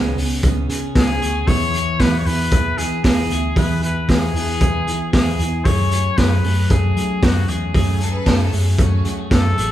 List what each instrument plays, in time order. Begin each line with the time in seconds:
Already playing: picked electric bass C#2, steel-string acoustic guitar C#3 E3 B3 C#4 G#4, clean electric guitar C#3 C#4 G#4, trumpet G#4
0.17 picked electric bass C#2, steel-string acoustic guitar B3 C#4 G#4, hi-hat pedal, open hi-hat
0.43 picked electric bass C#2, steel-string acoustic guitar E3 B3 C#4, kick, hi-hat pedal, open hi-hat
0.47 steel-string acoustic guitar G#4
0.69 picked electric bass C#3, steel-string acoustic guitar B3 C#4 G#4, hi-hat pedal, open hi-hat
0.95 picked electric bass C#2, steel-string acoustic guitar C#3 E3 B3 C#4 G#4, trumpet G#4, kick, snare, hi-hat pedal, open hi-hat
1.20 picked electric bass D2, steel-string acoustic guitar B3 C#4 G#4, clean electric guitar F#4, hi-hat pedal, open hi-hat
1.35 clean electric guitar G#4
1.47 picked electric bass E2, steel-string acoustic guitar E3 B3 E4 G#4, trumpet C#5, kick, hi-hat pedal, open hi-hat
1.73 steel-string acoustic guitar E4 G#4, hi-hat pedal, open hi-hat
1.77 steel-string acoustic guitar B3
1.99 picked electric bass E2, steel-string acoustic guitar E3 B3 E4 G#4, trumpet B4, kick, snare, hi-hat pedal, open hi-hat
2.19 trumpet C#5
2.26 picked electric bass E2, steel-string acoustic guitar E4 G#4, trumpet B4, hi-hat pedal, open hi-hat
2.30 steel-string acoustic guitar B3
2.51 picked electric bass E2, steel-string acoustic guitar E3 B3 E4, kick, hi-hat pedal, open hi-hat
2.56 steel-string acoustic guitar G#4
2.77 picked electric bass E3, steel-string acoustic guitar E4 G#4, trumpet G#4, hi-hat pedal, open hi-hat
2.82 steel-string acoustic guitar B3
3.04 picked electric bass E2, steel-string acoustic guitar E3 B3 E4 G#4, clean electric guitar D4, trumpet G#4, kick, snare, hi-hat pedal, open hi-hat
3.18 clean electric guitar E4
3.29 picked electric bass D2, steel-string acoustic guitar B3 E4 G#4, hi-hat pedal, open hi-hat
3.56 picked electric bass E2, steel-string acoustic guitar E3 B3 E4 G#4, trumpet B4, kick, hi-hat pedal, open hi-hat
3.82 steel-string acoustic guitar B3 E4 G#4, trumpet B4, hi-hat pedal, open hi-hat
4.08 picked electric bass E2, steel-string acoustic guitar E3 B3 E4 G#4, trumpet G#4, kick, snare, hi-hat pedal, open hi-hat
4.33 picked electric bass E2, clean electric guitar D4, steel-string acoustic guitar E4 G#4, hi-hat pedal, open hi-hat
4.38 steel-string acoustic guitar B3
4.48 clean electric guitar E4
4.60 picked electric bass E2, steel-string acoustic guitar E3 B3 E4 G#4, kick, hi-hat pedal, open hi-hat
4.87 picked electric bass E3, steel-string acoustic guitar B3 E4 G#4, hi-hat pedal, open hi-hat
5.13 picked electric bass E2, steel-string acoustic guitar E3 B3 E4 G#4, trumpet G#4, kick, snare, hi-hat pedal, open hi-hat
5.39 picked electric bass E2, steel-string acoustic guitar B3 E4 G#4, hi-hat pedal, open hi-hat
5.65 steel-string acoustic guitar F#2 C#3 F#3 A3 C#4 G#4, picked electric bass F#2, trumpet C#5, kick, hi-hat pedal, open hi-hat
5.91 steel-string acoustic guitar C#4 G#4, hi-hat pedal, open hi-hat
5.95 steel-string acoustic guitar F#3 A3
6.17 picked electric bass F#2, steel-string acoustic guitar F#2 C#3 F#3 A3 C#4 G#4, trumpet B4, kick, snare, hi-hat pedal, open hi-hat
6.44 picked electric bass F#2, steel-string acoustic guitar A3 C#4 G#4, hi-hat pedal, open hi-hat
6.48 steel-string acoustic guitar F#3
6.70 picked electric bass F#2, steel-string acoustic guitar F#3 A3 C#4, trumpet G#4, kick, hi-hat pedal, open hi-hat
6.74 steel-string acoustic guitar G#4
6.96 picked electric bass F#3, steel-string acoustic guitar A3 C#4 G#4, hi-hat pedal, open hi-hat
7.01 steel-string acoustic guitar F#3
7.22 picked electric bass F#2, steel-string acoustic guitar F#2 C#3 F#3 A3 C#4 G#4, trumpet F#4, kick, snare, hi-hat pedal, open hi-hat
7.48 picked electric bass E2, steel-string acoustic guitar A3 C#4 G#4, trumpet G#4, hi-hat pedal, open hi-hat
7.52 steel-string acoustic guitar F#3
7.74 picked electric bass F#2, steel-string acoustic guitar F#2 C#3 F#3 A3 C#4 G#4, kick, hi-hat pedal, open hi-hat
8.00 steel-string acoustic guitar A3 C#4 G#4, violin section A4, hi-hat pedal, open hi-hat
8.05 steel-string acoustic guitar F#3
8.13 violin section B4
8.26 picked electric bass F#2, steel-string acoustic guitar F#2 C#3 F#3 A3 C#4 G#4, violin section A4, kick, snare, hi-hat pedal, open hi-hat
8.52 picked electric bass F#2, steel-string acoustic guitar F#3 A3 C#4 G#4, violin section G#4, hi-hat pedal, open hi-hat
8.72 violin section G#4
8.78 steel-string acoustic guitar F#3 A3 C#4 G#4, violin section F#4, kick, hi-hat pedal, open hi-hat
9.04 picked electric bass F#3, steel-string acoustic guitar F#3 A3 C#4 G#4, clean electric guitar F#4, hi-hat pedal, open hi-hat
9.19 clean electric guitar G#4
9.30 steel-string acoustic guitar F#2 C#3 F#3 A3 C#4 G#4, picked electric bass F#2, trumpet A4, kick, snare, hi-hat pedal, open hi-hat
9.56 picked electric bass A1, steel-string acoustic guitar F#3 A3 C#4 G#4, hi-hat pedal, open hi-hat